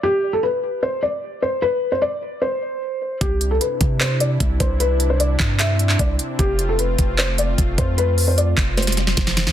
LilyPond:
<<
  \new Staff \with { instrumentName = "Felt piano" } { \time 4/4 \key c \major \tempo 4 = 151 g'8. a'16 b'4 c''8 d''4 c''8 | b'8. c''16 d''4 c''2 | g'8. a'16 b'4 c''8 d''4 c''8 | b'8. c''16 d''4 e''4 d''4 |
g'8. a'16 b'4 c''8 d''4 c''8 | b'8. c''16 d''4 c''2 | }
  \new Staff \with { instrumentName = "Analog synth pad" } { \time 4/4 \key c \major r1 | r1 | <c c' d' e'>1~ | <c c' d' e'>1 |
<a f'>1~ | <a f'>1 | }
  \new Staff \with { instrumentName = "808-style bass" } { \clef bass \time 4/4 \key c \major r1 | r1 | c,4 r8 c4. c,8 c,8~ | c,4. g,4. c,8 r8 |
f,,4. f,,4. f,,8 f,8~ | f,4. f,,4. f,,8. f,16 | }
  \new DrumStaff \with { instrumentName = "Drums" } \drummode { \time 4/4 r4 r4 r4 r4 | r4 r4 r4 r4 | <hh bd>8 hh8 hh8 <hh bd>8 hc8 hh8 <hh bd>8 <hh bd>8 | hh8 hh8 hh8 <hc bd>8 <hc hh>8 hh16 hc16 <hh bd>8 hh8 |
<hh bd>8 hh8 hh8 <hh bd>8 hc8 hh8 <hh bd>8 <hh bd>8 | hh8 hho8 hh8 <hc bd>8 <hh sn>32 hh32 <hh sn>32 hh32 <hh sn>16 sn16 <hh bd sn>16 sn16 <hh sn>16 sn16 | }
>>